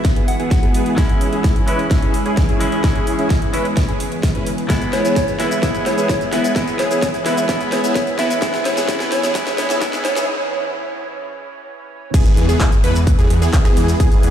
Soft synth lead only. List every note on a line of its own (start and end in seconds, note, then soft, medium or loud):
0.28 0.93 F#5 medium
4.93 5.37 C#5 medium
5.40 5.47 E5 medium
5.51 5.59 E5 medium
5.86 6.30 C#5 medium
6.32 6.40 E5 medium
6.44 6.52 E5 medium
6.79 7.23 C#5 medium
7.26 7.33 E5 medium
7.37 7.45 E5 medium
7.72 8.16 C#5 medium
8.19 8.26 E5 medium
8.30 8.38 E5 medium
8.65 8.87 C#5 medium
9.12 9.33 C#5 loud
9.58 9.80 C#5 loud
10.05 10.26 C#5 medium